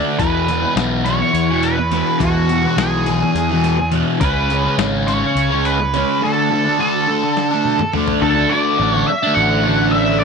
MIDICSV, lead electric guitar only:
0, 0, Header, 1, 2, 480
1, 0, Start_track
1, 0, Tempo, 573614
1, 167, Time_signature, 7, 3, 24, 8
1, 8569, End_track
2, 0, Start_track
2, 0, Title_t, "Lead electric guitar"
2, 0, Program_c, 0, 29
2, 160, Note_on_c, 0, 71, 105
2, 610, Note_off_c, 0, 71, 0
2, 881, Note_on_c, 0, 73, 105
2, 1366, Note_on_c, 0, 71, 89
2, 1379, Note_off_c, 0, 73, 0
2, 1842, Note_on_c, 0, 66, 81
2, 1861, Note_off_c, 0, 71, 0
2, 2335, Note_on_c, 0, 68, 70
2, 2339, Note_off_c, 0, 66, 0
2, 3257, Note_off_c, 0, 68, 0
2, 3520, Note_on_c, 0, 71, 103
2, 3970, Note_off_c, 0, 71, 0
2, 4249, Note_on_c, 0, 73, 103
2, 4734, Note_on_c, 0, 71, 85
2, 4742, Note_off_c, 0, 73, 0
2, 5211, Note_off_c, 0, 71, 0
2, 5214, Note_on_c, 0, 69, 91
2, 5688, Note_off_c, 0, 69, 0
2, 5698, Note_on_c, 0, 69, 63
2, 6619, Note_off_c, 0, 69, 0
2, 6880, Note_on_c, 0, 69, 91
2, 7107, Note_on_c, 0, 74, 92
2, 7131, Note_off_c, 0, 69, 0
2, 7475, Note_off_c, 0, 74, 0
2, 7475, Note_on_c, 0, 73, 92
2, 7588, Note_off_c, 0, 73, 0
2, 7591, Note_on_c, 0, 76, 98
2, 7819, Note_on_c, 0, 78, 98
2, 7822, Note_off_c, 0, 76, 0
2, 8297, Note_on_c, 0, 76, 90
2, 8328, Note_off_c, 0, 78, 0
2, 8528, Note_off_c, 0, 76, 0
2, 8532, Note_on_c, 0, 74, 90
2, 8569, Note_off_c, 0, 74, 0
2, 8569, End_track
0, 0, End_of_file